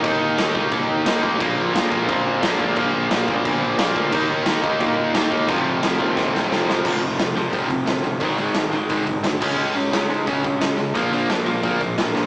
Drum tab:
CC |x-x-x-x-|x-x-x-x-|x-x-x-x-|x-x-x-x-|
HH |--------|--------|--------|--------|
SD |--o---o-|--o---o-|--o---o-|--o---o-|
BD |o--oo--o|o--oo--o|o--oo--o|o--oo--o|

CC |x-x-----|x-------|-------x|--------|
HH |--------|-ooooooo|ooooooo-|-ooooooo|
SD |--o-oooo|--o---o-|--o---o-|--o---o-|
BD |o--oo---|o---oo--|o---oo-o|----oo--|

CC |--------|
HH |ooooooo-|
SD |--o---oo|
BD |o---oo--|